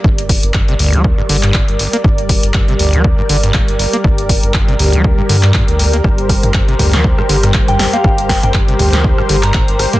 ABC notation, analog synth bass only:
X:1
M:4/4
L:1/16
Q:"Swing 16ths" 1/4=120
K:Gm
V:1 name="Analog synth bass" clef=bass
G,,,3 G,,,3 D,,3 z G,,,3 G,,, z2 | G,,,3 G,,,3 D,,3 z G,,,3 G,,, z2 | G,,,3 G,,,3 D,,3 z G,,3 D,,3 | G,,,3 G,,,3 D,,3 z G,,,3 G,,, z2 |
G,,,3 G,,,3 D,,3 z G,,,3 G,,, z2 |]